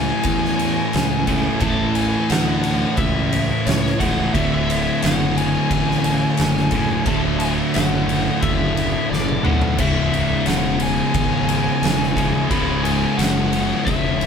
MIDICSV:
0, 0, Header, 1, 5, 480
1, 0, Start_track
1, 0, Tempo, 680272
1, 1145, Time_signature, 4, 2, 24, 8
1, 10065, End_track
2, 0, Start_track
2, 0, Title_t, "Lead electric guitar"
2, 0, Program_c, 0, 29
2, 0, Note_on_c, 0, 80, 94
2, 1136, Note_off_c, 0, 80, 0
2, 1138, Note_on_c, 0, 81, 115
2, 1365, Note_off_c, 0, 81, 0
2, 1384, Note_on_c, 0, 80, 84
2, 1623, Note_on_c, 0, 78, 103
2, 1632, Note_off_c, 0, 80, 0
2, 2096, Note_off_c, 0, 78, 0
2, 2098, Note_on_c, 0, 76, 93
2, 2582, Note_on_c, 0, 73, 76
2, 2597, Note_off_c, 0, 76, 0
2, 2807, Note_off_c, 0, 73, 0
2, 2822, Note_on_c, 0, 78, 95
2, 3058, Note_off_c, 0, 78, 0
2, 3060, Note_on_c, 0, 76, 111
2, 3515, Note_off_c, 0, 76, 0
2, 3547, Note_on_c, 0, 78, 97
2, 3787, Note_on_c, 0, 80, 102
2, 3794, Note_off_c, 0, 78, 0
2, 4959, Note_off_c, 0, 80, 0
2, 4992, Note_on_c, 0, 81, 124
2, 5056, Note_off_c, 0, 81, 0
2, 5214, Note_on_c, 0, 80, 90
2, 5281, Note_off_c, 0, 80, 0
2, 5470, Note_on_c, 0, 78, 94
2, 5921, Note_off_c, 0, 78, 0
2, 5940, Note_on_c, 0, 76, 97
2, 6396, Note_off_c, 0, 76, 0
2, 6419, Note_on_c, 0, 74, 88
2, 6660, Note_on_c, 0, 78, 106
2, 6671, Note_off_c, 0, 74, 0
2, 6910, Note_off_c, 0, 78, 0
2, 6913, Note_on_c, 0, 76, 115
2, 7363, Note_off_c, 0, 76, 0
2, 7389, Note_on_c, 0, 78, 112
2, 7636, Note_off_c, 0, 78, 0
2, 7637, Note_on_c, 0, 80, 96
2, 8805, Note_off_c, 0, 80, 0
2, 8824, Note_on_c, 0, 83, 125
2, 9053, Note_off_c, 0, 83, 0
2, 9056, Note_on_c, 0, 80, 97
2, 9295, Note_on_c, 0, 78, 100
2, 9310, Note_off_c, 0, 80, 0
2, 9754, Note_off_c, 0, 78, 0
2, 9772, Note_on_c, 0, 76, 101
2, 10065, Note_off_c, 0, 76, 0
2, 10065, End_track
3, 0, Start_track
3, 0, Title_t, "Distorted electric guitar"
3, 0, Program_c, 1, 30
3, 0, Note_on_c, 1, 45, 91
3, 0, Note_on_c, 1, 52, 93
3, 0, Note_on_c, 1, 57, 88
3, 884, Note_off_c, 1, 45, 0
3, 885, Note_off_c, 1, 52, 0
3, 896, Note_off_c, 1, 57, 0
3, 899, Note_on_c, 1, 57, 87
3, 909, Note_on_c, 1, 52, 73
3, 917, Note_on_c, 1, 45, 68
3, 1129, Note_off_c, 1, 45, 0
3, 1133, Note_off_c, 1, 52, 0
3, 1137, Note_on_c, 1, 45, 97
3, 1143, Note_on_c, 1, 52, 97
3, 1151, Note_off_c, 1, 57, 0
3, 1154, Note_on_c, 1, 57, 89
3, 2807, Note_off_c, 1, 45, 0
3, 2811, Note_off_c, 1, 52, 0
3, 2821, Note_off_c, 1, 57, 0
3, 2824, Note_on_c, 1, 57, 85
3, 2831, Note_on_c, 1, 52, 84
3, 2845, Note_on_c, 1, 45, 73
3, 3054, Note_off_c, 1, 52, 0
3, 3060, Note_off_c, 1, 45, 0
3, 3063, Note_on_c, 1, 38, 90
3, 3073, Note_on_c, 1, 45, 101
3, 3080, Note_off_c, 1, 57, 0
3, 3083, Note_on_c, 1, 50, 91
3, 4731, Note_off_c, 1, 38, 0
3, 4736, Note_off_c, 1, 45, 0
3, 4741, Note_off_c, 1, 50, 0
3, 4752, Note_on_c, 1, 50, 76
3, 4761, Note_on_c, 1, 45, 83
3, 4772, Note_on_c, 1, 38, 69
3, 4966, Note_off_c, 1, 38, 0
3, 4974, Note_on_c, 1, 38, 87
3, 4975, Note_off_c, 1, 45, 0
3, 4975, Note_off_c, 1, 50, 0
3, 4984, Note_on_c, 1, 45, 92
3, 4993, Note_on_c, 1, 50, 102
3, 6645, Note_off_c, 1, 50, 0
3, 6647, Note_off_c, 1, 38, 0
3, 6652, Note_off_c, 1, 45, 0
3, 6654, Note_on_c, 1, 50, 85
3, 6669, Note_on_c, 1, 45, 74
3, 6674, Note_on_c, 1, 38, 67
3, 6887, Note_off_c, 1, 50, 0
3, 6892, Note_off_c, 1, 38, 0
3, 6894, Note_off_c, 1, 45, 0
3, 6895, Note_on_c, 1, 37, 82
3, 6904, Note_on_c, 1, 44, 82
3, 6910, Note_on_c, 1, 49, 88
3, 8568, Note_off_c, 1, 37, 0
3, 8572, Note_off_c, 1, 44, 0
3, 8573, Note_off_c, 1, 49, 0
3, 8582, Note_on_c, 1, 49, 75
3, 8586, Note_on_c, 1, 44, 74
3, 8591, Note_on_c, 1, 37, 62
3, 8804, Note_off_c, 1, 37, 0
3, 8811, Note_off_c, 1, 49, 0
3, 8812, Note_on_c, 1, 37, 86
3, 8813, Note_off_c, 1, 44, 0
3, 8821, Note_on_c, 1, 44, 84
3, 8835, Note_on_c, 1, 49, 93
3, 10065, Note_off_c, 1, 37, 0
3, 10065, Note_off_c, 1, 44, 0
3, 10065, Note_off_c, 1, 49, 0
3, 10065, End_track
4, 0, Start_track
4, 0, Title_t, "Fingered electric bass"
4, 0, Program_c, 2, 33
4, 0, Note_on_c, 2, 37, 101
4, 74, Note_off_c, 2, 37, 0
4, 178, Note_on_c, 2, 40, 85
4, 554, Note_off_c, 2, 40, 0
4, 667, Note_on_c, 2, 37, 84
4, 1039, Note_off_c, 2, 37, 0
4, 1139, Note_on_c, 2, 33, 105
4, 1515, Note_off_c, 2, 33, 0
4, 1626, Note_on_c, 2, 38, 96
4, 1999, Note_off_c, 2, 38, 0
4, 2101, Note_on_c, 2, 37, 95
4, 2476, Note_off_c, 2, 37, 0
4, 2586, Note_on_c, 2, 37, 98
4, 2773, Note_off_c, 2, 37, 0
4, 2827, Note_on_c, 2, 25, 99
4, 3013, Note_off_c, 2, 25, 0
4, 3067, Note_on_c, 2, 26, 103
4, 3440, Note_off_c, 2, 26, 0
4, 3553, Note_on_c, 2, 30, 92
4, 3924, Note_off_c, 2, 30, 0
4, 4030, Note_on_c, 2, 33, 92
4, 4402, Note_off_c, 2, 33, 0
4, 4512, Note_on_c, 2, 30, 90
4, 4883, Note_off_c, 2, 30, 0
4, 4985, Note_on_c, 2, 26, 101
4, 5359, Note_off_c, 2, 26, 0
4, 5477, Note_on_c, 2, 30, 99
4, 5846, Note_off_c, 2, 30, 0
4, 5948, Note_on_c, 2, 30, 91
4, 6321, Note_off_c, 2, 30, 0
4, 6430, Note_on_c, 2, 30, 88
4, 6616, Note_off_c, 2, 30, 0
4, 6680, Note_on_c, 2, 35, 92
4, 6862, Note_off_c, 2, 35, 0
4, 6909, Note_on_c, 2, 25, 103
4, 7282, Note_off_c, 2, 25, 0
4, 7390, Note_on_c, 2, 28, 96
4, 7763, Note_off_c, 2, 28, 0
4, 7865, Note_on_c, 2, 32, 99
4, 8239, Note_off_c, 2, 32, 0
4, 8342, Note_on_c, 2, 28, 88
4, 8718, Note_off_c, 2, 28, 0
4, 8827, Note_on_c, 2, 25, 103
4, 9201, Note_off_c, 2, 25, 0
4, 9303, Note_on_c, 2, 30, 94
4, 9679, Note_off_c, 2, 30, 0
4, 9788, Note_on_c, 2, 28, 92
4, 10065, Note_off_c, 2, 28, 0
4, 10065, End_track
5, 0, Start_track
5, 0, Title_t, "Drums"
5, 165, Note_on_c, 9, 51, 116
5, 176, Note_on_c, 9, 36, 113
5, 236, Note_off_c, 9, 51, 0
5, 246, Note_off_c, 9, 36, 0
5, 317, Note_on_c, 9, 38, 38
5, 388, Note_off_c, 9, 38, 0
5, 419, Note_on_c, 9, 51, 80
5, 490, Note_off_c, 9, 51, 0
5, 657, Note_on_c, 9, 51, 99
5, 675, Note_on_c, 9, 38, 110
5, 728, Note_off_c, 9, 51, 0
5, 746, Note_off_c, 9, 38, 0
5, 897, Note_on_c, 9, 51, 78
5, 898, Note_on_c, 9, 36, 85
5, 968, Note_off_c, 9, 51, 0
5, 969, Note_off_c, 9, 36, 0
5, 1131, Note_on_c, 9, 51, 99
5, 1138, Note_on_c, 9, 36, 120
5, 1202, Note_off_c, 9, 51, 0
5, 1209, Note_off_c, 9, 36, 0
5, 1377, Note_on_c, 9, 51, 79
5, 1448, Note_off_c, 9, 51, 0
5, 1620, Note_on_c, 9, 51, 115
5, 1638, Note_on_c, 9, 38, 127
5, 1691, Note_off_c, 9, 51, 0
5, 1709, Note_off_c, 9, 38, 0
5, 1859, Note_on_c, 9, 51, 76
5, 1930, Note_off_c, 9, 51, 0
5, 2095, Note_on_c, 9, 51, 96
5, 2101, Note_on_c, 9, 36, 123
5, 2166, Note_off_c, 9, 51, 0
5, 2172, Note_off_c, 9, 36, 0
5, 2347, Note_on_c, 9, 51, 77
5, 2417, Note_off_c, 9, 51, 0
5, 2587, Note_on_c, 9, 51, 108
5, 2604, Note_on_c, 9, 38, 107
5, 2657, Note_off_c, 9, 51, 0
5, 2675, Note_off_c, 9, 38, 0
5, 2727, Note_on_c, 9, 38, 35
5, 2797, Note_off_c, 9, 38, 0
5, 2825, Note_on_c, 9, 36, 84
5, 2828, Note_on_c, 9, 51, 81
5, 2895, Note_off_c, 9, 36, 0
5, 2899, Note_off_c, 9, 51, 0
5, 3066, Note_on_c, 9, 36, 108
5, 3068, Note_on_c, 9, 51, 103
5, 3137, Note_off_c, 9, 36, 0
5, 3139, Note_off_c, 9, 51, 0
5, 3315, Note_on_c, 9, 51, 82
5, 3386, Note_off_c, 9, 51, 0
5, 3545, Note_on_c, 9, 51, 113
5, 3563, Note_on_c, 9, 38, 124
5, 3616, Note_off_c, 9, 51, 0
5, 3633, Note_off_c, 9, 38, 0
5, 3794, Note_on_c, 9, 51, 78
5, 3864, Note_off_c, 9, 51, 0
5, 4027, Note_on_c, 9, 36, 113
5, 4027, Note_on_c, 9, 51, 112
5, 4097, Note_off_c, 9, 36, 0
5, 4098, Note_off_c, 9, 51, 0
5, 4170, Note_on_c, 9, 38, 37
5, 4240, Note_off_c, 9, 38, 0
5, 4263, Note_on_c, 9, 51, 88
5, 4333, Note_off_c, 9, 51, 0
5, 4497, Note_on_c, 9, 51, 116
5, 4515, Note_on_c, 9, 38, 114
5, 4567, Note_off_c, 9, 51, 0
5, 4585, Note_off_c, 9, 38, 0
5, 4636, Note_on_c, 9, 38, 34
5, 4707, Note_off_c, 9, 38, 0
5, 4733, Note_on_c, 9, 51, 80
5, 4742, Note_on_c, 9, 36, 92
5, 4804, Note_off_c, 9, 51, 0
5, 4813, Note_off_c, 9, 36, 0
5, 4979, Note_on_c, 9, 51, 97
5, 4984, Note_on_c, 9, 36, 111
5, 5049, Note_off_c, 9, 51, 0
5, 5054, Note_off_c, 9, 36, 0
5, 5220, Note_on_c, 9, 51, 83
5, 5290, Note_off_c, 9, 51, 0
5, 5461, Note_on_c, 9, 51, 105
5, 5479, Note_on_c, 9, 38, 127
5, 5531, Note_off_c, 9, 51, 0
5, 5549, Note_off_c, 9, 38, 0
5, 5709, Note_on_c, 9, 51, 78
5, 5779, Note_off_c, 9, 51, 0
5, 5944, Note_on_c, 9, 51, 102
5, 5947, Note_on_c, 9, 36, 120
5, 6014, Note_off_c, 9, 51, 0
5, 6017, Note_off_c, 9, 36, 0
5, 6190, Note_on_c, 9, 51, 80
5, 6261, Note_off_c, 9, 51, 0
5, 6444, Note_on_c, 9, 38, 68
5, 6515, Note_off_c, 9, 38, 0
5, 6552, Note_on_c, 9, 48, 72
5, 6622, Note_off_c, 9, 48, 0
5, 6666, Note_on_c, 9, 45, 94
5, 6737, Note_off_c, 9, 45, 0
5, 6785, Note_on_c, 9, 43, 110
5, 6855, Note_off_c, 9, 43, 0
5, 6903, Note_on_c, 9, 49, 103
5, 6903, Note_on_c, 9, 51, 104
5, 6907, Note_on_c, 9, 36, 108
5, 6974, Note_off_c, 9, 49, 0
5, 6974, Note_off_c, 9, 51, 0
5, 6978, Note_off_c, 9, 36, 0
5, 7153, Note_on_c, 9, 51, 75
5, 7223, Note_off_c, 9, 51, 0
5, 7379, Note_on_c, 9, 51, 118
5, 7397, Note_on_c, 9, 38, 126
5, 7450, Note_off_c, 9, 51, 0
5, 7468, Note_off_c, 9, 38, 0
5, 7618, Note_on_c, 9, 51, 86
5, 7689, Note_off_c, 9, 51, 0
5, 7862, Note_on_c, 9, 51, 118
5, 7865, Note_on_c, 9, 36, 121
5, 7933, Note_off_c, 9, 51, 0
5, 7936, Note_off_c, 9, 36, 0
5, 8105, Note_on_c, 9, 51, 91
5, 8176, Note_off_c, 9, 51, 0
5, 8347, Note_on_c, 9, 51, 111
5, 8364, Note_on_c, 9, 38, 116
5, 8417, Note_off_c, 9, 51, 0
5, 8435, Note_off_c, 9, 38, 0
5, 8490, Note_on_c, 9, 38, 32
5, 8560, Note_off_c, 9, 38, 0
5, 8586, Note_on_c, 9, 36, 94
5, 8593, Note_on_c, 9, 51, 84
5, 8656, Note_off_c, 9, 36, 0
5, 8664, Note_off_c, 9, 51, 0
5, 8825, Note_on_c, 9, 36, 110
5, 8826, Note_on_c, 9, 51, 108
5, 8896, Note_off_c, 9, 36, 0
5, 8896, Note_off_c, 9, 51, 0
5, 9068, Note_on_c, 9, 51, 79
5, 9138, Note_off_c, 9, 51, 0
5, 9307, Note_on_c, 9, 51, 124
5, 9325, Note_on_c, 9, 38, 127
5, 9378, Note_off_c, 9, 51, 0
5, 9395, Note_off_c, 9, 38, 0
5, 9546, Note_on_c, 9, 51, 82
5, 9616, Note_off_c, 9, 51, 0
5, 9785, Note_on_c, 9, 36, 110
5, 9790, Note_on_c, 9, 51, 98
5, 9856, Note_off_c, 9, 36, 0
5, 9861, Note_off_c, 9, 51, 0
5, 10028, Note_on_c, 9, 51, 72
5, 10065, Note_off_c, 9, 51, 0
5, 10065, End_track
0, 0, End_of_file